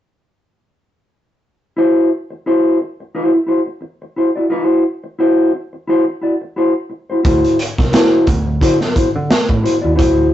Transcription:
1.76 E4 F#4 C5
2.30 muted clean electric guitar stroke
2.46 E4 F#4 C5
2.80 muted clean electric guitar stroke
3.00 muted clean electric guitar stroke
3.15 E4 F#4 C5
3.34 muted clean electric guitar stroke
3.47 E4 F#4 C5
3.66 muted clean electric guitar stroke
3.81 muted clean electric guitar stroke
4.02 muted clean electric guitar stroke
4.16 E4 F#4 C5
4.35 E4 F#4 D5
4.50 D#4 F4 B4
4.63 E4 F#4 C5
5.04 muted clean electric guitar stroke
5.19 E4 F#4 C5
5.53 muted clean electric guitar stroke
5.73 muted clean electric guitar stroke
5.88 E4 F#4 C5
6.07 muted clean electric guitar stroke
6.21 E4 F#4 D5
6.41 muted clean electric guitar stroke
6.56 E4 F#4 C5
6.90 muted clean electric guitar stroke
7.10 E4 F#4 C5
7.24 D2 E4 F#4 C5, kick, closed hi-hat
7.44 closed hi-hat
7.59 closed hi-hat
7.77 C2, muted clean electric guitar stroke, kick, snare
7.92 E4 F#4 C5, snare, closed hi-hat
8.27 D2, kick, closed hi-hat
8.46 muted clean electric guitar stroke
8.61 D3 E4 F#4 C5, kick, closed hi-hat
8.80 muted clean electric guitar stroke, snare
8.96 E4 F#4 C5, muted picked electric bass stroke, kick, closed hi-hat
9.15 D3, muted clean electric guitar stroke
9.29 muted clean electric guitar stroke, muted picked electric bass stroke, snare, closed hi-hat
9.48 A2, muted clean electric guitar stroke, kick
9.63 E4 F#4 C5, closed hi-hat
9.82 D#2 E4 F#4 D5
9.96 D2 E4 F#4 C5, kick, closed hi-hat

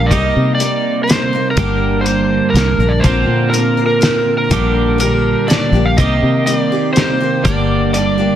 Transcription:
Already playing: A#1 G3 A#3 D4 G4 A#4
0.06 D#5
0.11 C2 C3 G3 A#3 D#4 G4 A#4, kick, closed hi-hat
0.36 C3
0.55 D5
0.60 G3 A#3 D#4 A#4, closed hi-hat
1.04 G3 C5
1.09 A#3 D#4 A#4, snare, closed hi-hat
1.33 A#3 D#4 A#4
1.51 A#4
1.57 G1 G2 D3 G3 A#3 D4 G4 A#4, kick, closed hi-hat
2.01 C5
2.06 G3 A#3 D4 A#4, closed hi-hat
2.50 A#4
2.54 C2 G3 A#3 D4, snare, closed hi-hat
2.58 A#4
2.78 A#1 A#3 D4 A#4
2.83 G3
2.89 D5
3.00 A#2 C5, closed hi-hat
3.04 A#1 D3 F3 A#3 C4 D4 F4 A#4, kick
3.26 A#2
3.50 F3 A#4
3.54 C4 D4 A#4, closed hi-hat
3.77 F3 C4 D4 A#4
3.86 A#4
4.01 F3 C4 D4 A#4, snare, closed hi-hat
4.38 A#4
4.51 A#1 A#2 D3 G3 A#3 D4 G4, kick, closed hi-hat
4.98 G3 A#3 D4 G4 A#4, closed hi-hat
5.48 G3 A#3 D4 G4 D5, snare, closed hi-hat
5.72 A#1 G3 A#3 D4 G4
5.86 F5
5.97 C2 C3 D#3 G3 A#3 C4 D#4 D#5, kick, closed hi-hat
6.01 G4
6.23 C3
6.46 G3 A#3 D#4 G4 D5, closed hi-hat
6.72 A#3 D#4 G4
6.93 G3 A#3 D#4 C5, snare, closed hi-hat
6.98 G4
7.20 A#3 D#4 G4
7.44 G1 G2 D3 A#3 D5, kick, closed hi-hat
7.48 G3 D4 G4
7.94 G3 A#3 D4 G4 D5, closed hi-hat
8.18 G3 A#3 D4 G4

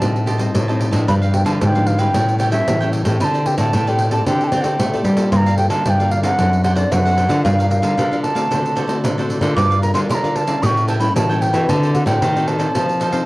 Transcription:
Already playing: G3 C4 D#4 A5
0.01 A2 G4 C5 D#5 A5, pandeiro
0.16 muted cavaquinho stroke, pandeiro
0.26 G4 C5 D#5 A5, pandeiro
0.38 G3 C4 D#4 C5 D#5 A5, pandeiro
0.55 A2, pandeiro
0.68 G3 C4 D#4 C5 D#5 A5, pandeiro
0.79 G4 C5 D#5 A5, pandeiro
0.91 A2 F3 B3 D4 C5 D#5 A5, pandeiro
1.07 G2 D4 G4 B4 F5 B5, pandeiro
1.22 G4 B4 F5, pandeiro
1.34 F3 B3 D4 G5, muted cavaquinho stroke, pandeiro
1.45 D3 G4 B4 F5 A5, pandeiro
1.61 G#2 D3 D4 G4 B4 F5 A5, pandeiro
1.66 G5
1.75 F3 B3 D4 G4 B4 F5, pandeiro
1.87 F5, pandeiro
1.98 G3 C#4 E4 G4 B4 F5 G5, pandeiro
2.14 A2 G4 A4 C#5 G5, pandeiro
2.28 muted cavaquinho stroke, pandeiro
2.39 G4 A4 C#5 G5, pandeiro
2.51 G3 C#4 E4 A4 C#5 E5 G5, pandeiro
2.68 A2 E3, pandeiro
2.80 G3 C#4 E4 A4 C#5 G5, pandeiro
2.92 G4 A4 C#5 G5, pandeiro
3.05 A2 C4 G4 A4 C#5 G5, pandeiro
3.20 D3 D4 G4 C5 D5 B5, pandeiro
3.24 A5
3.34 G4 C5 D5, pandeiro
3.46 C4 G4 A4 G5, muted cavaquinho stroke, pandeiro
3.58 A2 G4 C5 D5 A5, pandeiro
3.73 A2 D4 G4 C5 D5, pandeiro
3.87 C4 G4 A4 C5 D5 G5, pandeiro
3.99 pandeiro
4.11 C4 G4 A4 C5 D5 A5, pandeiro
4.26 D3 C4 D4 G4 A4 C5 D5 G5, pandeiro
4.40 A5, muted cavaquinho stroke, pandeiro
4.47 G5
4.52 C4 D4 G4 C5 D5, pandeiro
4.61 C4 G4 D5 F#5 G5, pandeiro
4.65 G4 A4 C5
4.79 A2 A3, pandeiro
4.94 C4 G4 A4 C5 D5, pandeiro
5.04 G3 D4 G4 C5 D5, pandeiro
5.17 A#3 F4 G4 A4 C5 D5, pandeiro
5.32 G2 G3 G4 A#4 D5 F5 C6, pandeiro
5.36 A#5
5.46 A#4 D5 F5, pandeiro
5.58 A#3 F4 A4 G5, muted cavaquinho stroke, pandeiro
5.70 D3 A#4 D5 F5 A5, pandeiro
5.85 G2 D3 G4 A#4 D5 F5 A5, pandeiro
5.90 G5
6.00 A#3 F4 A4 A#4 D5 F5, pandeiro
6.11 F5, pandeiro
6.23 C4 D4 A4 A#4 D5 F5 F#5, pandeiro
6.39 F#2 F#3 D4 C5 D5 F#5, pandeiro
6.53 muted cavaquinho stroke, pandeiro
6.64 D4 C5 D5 F#5, pandeiro
6.76 C4 D4 A4 C5 D5 F#5, pandeiro
6.92 F#2 F#3 F#5, pandeiro
7.05 C4 D4 A4 C5 D5 F#5, pandeiro
7.16 D4 C5 D5 F#5, pandeiro
7.29 D3 D4 F4 A#4 C5 D5 F#5, pandeiro
7.44 G2 G3 G4 A#4 D5 F5, pandeiro
7.59 A#4 D5 F5, pandeiro
7.69 D4 F4 A#4 F5, muted cavaquinho stroke, pandeiro
7.82 D3 A#4 D5 F5, pandeiro
7.98 D3 G4 A#4 D5 F5, pandeiro
8.11 D4 F4 A#4 D5 F5, pandeiro
8.23 A5, pandeiro
8.35 A3 C4 F#4 A#4 D5 F5, pandeiro
8.50 D3 F#4 A4 C5 D5, pandeiro
8.65 muted cavaquinho stroke, pandeiro
8.75 F#4 A4 C5 D5, pandeiro
8.88 A3 C4 F#4 A4 C5 D5, pandeiro
9.04 A2 D3, pandeiro
9.18 A3 C4 F#4 A4 C5 D5, pandeiro
9.29 F#4 A4 C5 D5, pandeiro
9.41 D3 D4 F4 A4 A#4 C5 D5, pandeiro
9.56 G2 G3 G4 A#4 D5 F5 D6, pandeiro
9.71 A#4 D5 F5, pandeiro
9.82 D4 F4 A#4 A#5, muted cavaquinho stroke, pandeiro
9.94 D3 A#4 D5 F5 C6, pandeiro
10.09 D3 G4 A#4 D5 F5 C6, pandeiro
10.14 A#5
10.24 D4 F4 A#4 D5 F5, pandeiro
10.36 A5, pandeiro
10.47 G3 C#4 E4 A#4 D5 F5, pandeiro
10.63 A2 G4 A4 C#5 G5 C#6 D#6, pandeiro
10.77 muted cavaquinho stroke, pandeiro
10.87 G4 A4 C#5 G5 A5, pandeiro
10.99 G3 C#4 E4 A4 C#5 G5 B5, pandeiro
11.16 A2 E3 A5, pandeiro
11.29 G3 C#4 E4 A4 C#5 G5, pandeiro
11.41 G4 A4 C#5 G5, pandeiro
11.53 E3 C4 F#4 A4 C#5 G5, pandeiro
11.68 D3 F#4 A4 C5 D5 A5, pandeiro
11.82 A4 C5 D5, pandeiro
11.94 C4 F#4 A4 F#5, muted cavaquinho stroke, pandeiro
12.06 A2 A4 C5 D5 G5, pandeiro
12.22 A2 D#3 F#4 A4 C5 D5, pandeiro
12.36 C4 F#4 A4 C5 D5, pandeiro
12.48 A5, pandeiro
12.59 C4 D#4 A4 C5 D5, pandeiro
12.75 F3 D#4 A4 C5 F5, pandeiro
12.89 muted cavaquinho stroke, pandeiro
13.00 D#4 A4 C5 F5, pandeiro
13.12 C4 D#4 A4 C5 F5, pandeiro

